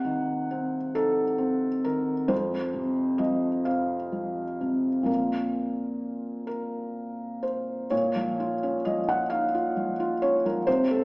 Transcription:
0.00 2.26 C3 soft
0.00 0.94 F#5 medium
0.05 0.77 D#3 soft
0.51 1.23 C4 soft
0.95 1.67 D#4 soft
0.95 1.85 A4 medium
1.38 2.12 C4 soft
1.84 2.31 D#3 soft
1.84 2.30 A#4 medium
2.28 5.03 F2 soft
2.28 3.20 C5 medium
2.74 3.48 C3 soft
3.18 3.95 F3 soft
3.18 3.66 D#5 medium
3.65 4.42 C4 soft
3.65 5.07 F5 medium
4.12 4.88 F3 soft
4.61 5.08 C3 soft
5.03 7.85 A#2 soft
5.03 7.86 F3 soft
5.03 7.86 A#3 soft
5.03 7.87 C4 soft
5.03 6.45 A#4 medium
6.47 7.43 A#4 medium
7.43 7.91 C5 soft
7.90 10.63 A#2 medium
7.90 8.83 C#5 medium
8.16 8.52 F3 soft
8.40 8.76 F4 soft
8.63 8.99 C#4 soft
8.85 9.22 F3 soft
8.85 9.07 D#5 medium
9.08 9.44 F4 soft
9.08 9.31 F#5 medium
9.30 9.54 D#4 soft
9.30 10.22 F5 medium
9.54 9.91 F4 soft
9.77 10.13 F3 soft
10.00 10.36 F4 soft
10.22 10.59 C#4 soft
10.22 10.45 C#5 medium
10.45 10.68 F3 soft
10.45 10.68 A#4 medium
10.67 11.04 C3 medium
10.67 10.90 C5 medium
10.91 11.04 C4 soft
10.91 11.04 A4 medium

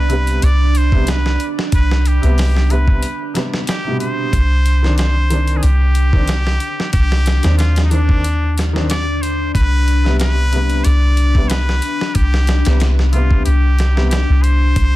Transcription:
0.00 0.39 C2 medium
0.00 4.31 D4 medium
0.00 0.45 B4 loud
0.09 0.40 C3 medium
0.09 0.41 G3 medium
0.09 0.42 B3 medium
0.09 closed hi-hat medium
0.27 closed hi-hat soft
0.42 1.37 C2 medium
0.42 0.79 D5 loud
0.42 closed hi-hat medium
0.75 1.11 C5 medium
0.75 closed hi-hat medium
0.92 1.10 C3 medium
0.92 1.11 G3 medium
0.92 1.12 B3 medium
0.92 kick loud
1.07 1.47 B4 loud
1.07 snare loud
1.07 closed hi-hat medium
1.26 snare soft
1.40 closed hi-hat medium
1.59 snare medium
1.72 2.19 C2 loud
1.72 2.09 B4 loud
1.72 kick loud
1.72 closed hi-hat medium
1.91 snare medium
2.06 2.73 G4 medium
2.06 closed hi-hat medium
2.21 3.03 C2 medium
2.21 2.52 C3 medium
2.21 2.53 G3 medium
2.21 2.54 B3 loud
2.21 closed hi-hat soft
2.38 snare loud
2.38 open hi-hat medium
2.57 snare soft
2.69 3.00 C3 medium
2.69 3.01 G3 medium
2.69 3.02 B3 medium
2.69 3.36 B4 medium
2.69 closed hi-hat medium
2.88 kick loud
3.03 closed hi-hat medium
3.34 3.55 C3 medium
3.34 3.56 G3 medium
3.34 3.57 B3 medium
3.34 snare medium
3.34 closed hi-hat medium
3.54 snare soft
3.67 3.98 G4 loud
3.67 snare loud
3.67 closed hi-hat medium
3.84 4.32 B2 medium
3.84 4.31 C3 medium
3.84 4.31 G3 medium
4.00 4.94 C5 loud
4.00 closed hi-hat medium
4.33 5.61 C2 loud
4.33 14.75 D4 medium
4.33 kick loud
4.33 closed hi-hat medium
4.66 closed hi-hat medium
4.83 5.13 D#3 medium
4.83 5.14 C4 medium
4.83 5.15 D4 loud
4.83 snare soft
4.97 5.58 C5 loud
4.97 snare loud
4.97 closed hi-hat medium
5.30 5.61 D#3 medium
5.30 5.62 C4 medium
5.30 5.63 D4 medium
5.30 closed hi-hat medium
5.47 closed hi-hat soft
5.57 5.65 G#4 medium
5.63 6.58 C2 medium
5.63 6.92 G4 loud
5.63 closed hi-hat medium
5.95 closed hi-hat medium
6.13 6.31 D#3 medium
6.13 6.32 C4 medium
6.13 6.33 D4 loud
6.13 kick loud
6.28 snare loud
6.28 closed hi-hat medium
6.47 snare soft
6.60 closed hi-hat medium
6.80 snare medium
6.93 7.40 C2 medium
6.93 7.54 G4 loud
6.93 kick loud
6.93 closed hi-hat medium
7.12 snare medium
7.26 snare loud
7.26 closed hi-hat medium
7.43 9.52 D#2 medium
7.43 7.74 D#3 medium
7.43 7.75 C4 medium
7.43 7.76 D4 loud
7.43 snare loud
7.43 closed hi-hat medium
7.58 7.83 F4 loud
7.58 snare loud
7.58 closed hi-hat medium
7.76 snare loud
7.76 closed hi-hat medium
7.84 7.92 D#4 medium
7.91 8.22 D#3 medium
7.91 8.23 C4 medium
7.91 8.62 D4 loud
7.91 8.24 D4 medium
7.91 closed hi-hat medium
8.09 kick medium
8.24 closed hi-hat medium
8.58 snare medium
8.58 closed hi-hat medium
8.73 8.92 D#3 loud
8.73 8.93 C4 medium
8.73 8.94 D4 loud
8.73 snare soft
8.89 9.23 D5 loud
8.89 snare loud
8.89 closed hi-hat medium
9.22 9.54 C5 loud
9.22 closed hi-hat medium
9.54 10.82 C2 loud
9.54 10.16 B4 loud
9.54 kick loud
9.54 closed hi-hat medium
9.88 closed hi-hat medium
10.04 10.35 C3 medium
10.04 10.36 G3 medium
10.04 snare soft
10.08 10.37 B3 loud
10.19 10.86 B4 loud
10.19 snare loud
10.19 closed hi-hat medium
10.52 10.83 C3 medium
10.52 10.84 G3 medium
10.52 closed hi-hat medium
10.56 10.85 B3 medium
10.70 closed hi-hat soft
10.84 11.80 C2 medium
10.84 11.51 D5 loud
10.84 closed hi-hat medium
11.17 closed hi-hat medium
11.35 11.53 C3 medium
11.35 11.54 G3 medium
11.35 11.55 B3 loud
11.35 kick medium
11.49 12.17 B4 loud
11.49 snare loud
11.49 closed hi-hat medium
11.69 snare soft
11.82 closed hi-hat medium
12.01 snare medium
12.15 12.62 C2 medium
12.15 12.87 G4 loud
12.15 kick loud
12.15 closed hi-hat medium
12.34 snare medium
12.47 snare loud
12.47 closed hi-hat medium
12.65 13.46 C2 medium
12.65 12.96 C3 medium
12.65 12.97 G3 medium
12.65 snare loud
12.65 closed hi-hat medium
12.69 12.98 B3 loud
12.80 snare loud
12.80 closed hi-hat medium
12.99 snare soft
13.12 13.44 C3 medium
13.12 13.45 G3 medium
13.12 13.45 B3 medium
13.12 13.43 F4 medium
13.12 closed hi-hat medium
13.31 kick loud
13.45 14.26 C2 medium
13.45 14.07 G4 loud
13.45 closed hi-hat medium
13.79 snare medium
13.79 closed hi-hat medium
13.95 14.14 C3 medium
13.95 14.15 G3 medium
13.95 14.16 B3 loud
13.95 snare soft
14.09 14.44 G4 loud
14.09 snare loud
14.09 closed hi-hat medium
14.30 14.74 C2 loud
14.43 14.96 C5 loud
14.43 closed hi-hat medium
14.76 14.96 C2 medium
14.76 kick loud
14.76 closed hi-hat medium

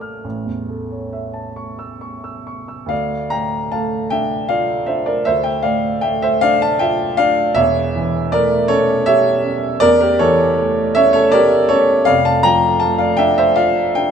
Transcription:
0.00 0.20 A1 soft
0.00 1.56 A3 medium
0.00 0.26 D5 soft
0.00 0.27 F5 soft
0.00 0.27 A5 soft
0.00 0.27 D6 soft
0.00 0.27 F6 soft
0.24 2.87 A1 soft
0.46 0.82 E2 soft
0.69 1.04 A4 soft
0.91 1.26 C#5 soft
1.13 1.48 E5 soft
1.33 1.70 A5 soft
1.56 1.92 C#6 soft
1.79 2.15 E6 soft
2.01 2.37 C#6 soft
2.24 2.60 E6 soft
2.47 2.82 C#6 soft
2.68 2.90 E6 soft
2.86 5.21 D2 medium
2.86 3.29 D5 medium
2.86 3.31 F5 medium
3.30 3.96 A2 soft
3.30 3.69 G5 medium
3.30 3.72 A#5 medium
3.72 4.35 A3 soft
3.72 4.09 F5 medium
3.72 4.12 A5 medium
4.10 4.74 D4 soft
4.10 4.48 E5 medium
4.10 4.50 G5 medium
4.49 5.11 F4 soft
4.49 4.86 D5 medium
4.49 4.88 F5 medium
4.86 5.50 D4 soft
4.86 5.06 C5 medium
4.86 5.07 E5 medium
5.06 5.25 A#4 medium
5.06 5.26 D5 medium
5.25 7.53 D2 medium
5.25 5.45 C5 medium
5.25 5.44 E5 loud
5.44 5.64 E5 medium
5.44 5.64 G5 medium
5.63 6.27 A2 soft
5.63 6.01 D5 medium
5.63 6.03 F5 medium
6.01 6.66 A3 medium
6.01 6.21 E5 medium
6.01 6.22 G5 medium
6.22 6.42 C5 medium
6.22 6.43 E5 medium
6.41 7.05 D4 medium
6.41 6.61 D5 medium
6.41 6.61 F5 loud
6.62 6.81 F5 medium
6.62 6.81 A5 loud
6.79 7.42 F4 medium
6.79 7.16 E5 medium
6.79 7.18 G5 loud
7.17 7.57 D4 medium
7.17 7.54 D5 medium
7.17 7.56 F5 loud
7.54 9.77 E1 medium
7.54 9.77 E2 medium
7.54 8.28 C#5 medium
7.54 8.31 E5 loud
7.96 8.55 E3 medium
8.32 8.93 A3 medium
8.32 8.68 A#4 medium
8.32 8.70 D5 loud
8.68 9.29 C#4 medium
8.68 9.04 A4 medium
8.68 9.05 C#5 loud
9.06 9.67 G4 medium
9.06 9.78 C#5 medium
9.06 9.82 E5 loud
9.44 10.05 C#4 medium
9.80 12.03 E2 medium
9.80 9.99 A#4 loud
9.80 10.00 D5 loud
10.01 10.20 G4 medium
10.01 10.20 A#4 medium
10.19 10.81 E3 medium
10.19 10.92 A4 medium
10.19 10.95 C#5 loud
10.58 11.18 A3 medium
10.95 11.56 C#4 medium
10.95 11.11 C#5 medium
10.95 11.14 E5 loud
11.13 11.32 A4 medium
11.13 11.32 C#5 loud
11.32 11.93 G4 medium
11.32 11.68 A#4 medium
11.32 11.70 D5 loud
11.69 12.07 C#4 medium
11.69 12.05 A4 medium
11.69 12.07 C#5 loud
12.05 14.11 F1 medium
12.05 14.11 F2 medium
12.05 12.24 D5 medium
12.05 12.25 F5 loud
12.25 12.43 F5 medium
12.25 12.44 A5 loud
12.43 13.04 F3 medium
12.43 12.79 G5 medium
12.43 12.81 A#5 loud
12.80 13.42 A3 medium
12.80 12.97 F5 medium
12.80 12.99 A5 loud
12.98 13.18 D5 medium
12.98 13.18 F5 medium
13.17 13.81 D4 medium
13.17 13.36 E5 medium
13.17 13.37 G5 loud
13.38 13.56 C5 medium
13.38 13.57 E5 loud
13.56 14.11 F4 medium
13.56 13.94 D5 medium
13.56 13.96 F5 loud
13.95 14.11 D4 medium
13.95 14.11 E5 medium
13.95 14.11 G5 loud

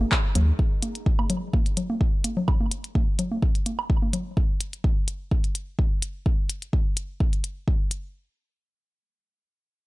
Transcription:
0.00 0.59 G#4 medium
0.00 0.59 D#5 medium
0.00 0.59 A#5 medium
0.00 high conga soft
0.12 kick loud
0.12 clap medium
0.12 high woodblock medium
0.35 0.52 D#2 medium
0.35 closed hi-hat medium
0.35 high conga soft
0.35 low conga medium
0.59 kick loud
0.82 closed hi-hat medium
0.82 high conga soft
0.95 closed hi-hat soft
1.06 kick loud
1.19 high conga soft
1.19 high woodblock medium
1.30 closed hi-hat medium
1.30 low conga medium
1.53 kick loud
1.53 high conga soft
1.66 closed hi-hat soft
1.77 closed hi-hat medium
1.77 low conga medium
1.90 high conga soft
2.01 kick loud
2.24 closed hi-hat medium
2.24 high conga soft
2.37 low conga medium
2.48 kick loud
2.48 high woodblock medium
2.61 high conga soft
2.71 closed hi-hat medium
2.84 closed hi-hat soft
2.95 kick loud
2.95 high conga soft
3.19 closed hi-hat medium
3.19 low conga medium
3.32 high conga soft
3.42 kick loud
3.55 closed hi-hat soft
3.66 closed hi-hat medium
3.66 high conga soft
3.79 high woodblock medium
3.90 kick loud
4.02 high conga soft
4.13 closed hi-hat medium
4.13 low conga medium
4.37 kick loud
4.61 closed hi-hat medium
4.73 closed hi-hat soft
4.84 kick loud
5.08 closed hi-hat medium
5.31 kick loud
5.44 closed hi-hat soft
5.55 closed hi-hat medium
5.79 kick loud
6.02 closed hi-hat medium
6.26 kick loud
6.50 closed hi-hat medium
6.62 closed hi-hat soft
6.73 kick loud
6.97 closed hi-hat medium
7.20 kick loud
7.33 closed hi-hat soft
7.44 closed hi-hat medium
7.68 kick loud
7.91 closed hi-hat medium

